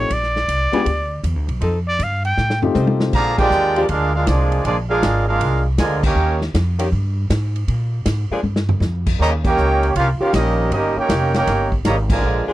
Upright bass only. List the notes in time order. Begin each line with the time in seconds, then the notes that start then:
0.10 A#1
0.48 C2
0.73 muted upright bass stroke
0.86 D2
1.24 E2
1.36 D2
1.48 B1
1.61 F2
1.99 G2
2.38 A2
2.75 C3
3.13 A#2
3.50 D#2
3.89 D2
4.27 C2
4.65 A#1
5.02 G#1
5.40 C2
5.78 D2
6.15 D#2
6.54 F2
6.92 G2
7.30 G#2
7.68 A#2
8.06 G#2
8.31 muted upright bass stroke
8.43 G2
8.80 F2
9.19 D#2
9.57 C#2
9.96 C2
10.20 muted upright bass stroke
10.33 A#1
10.71 G1
10.96 muted upright bass stroke
11.09 F1
11.47 G1
11.85 G#1
12.23 A#1
12.48 muted upright bass stroke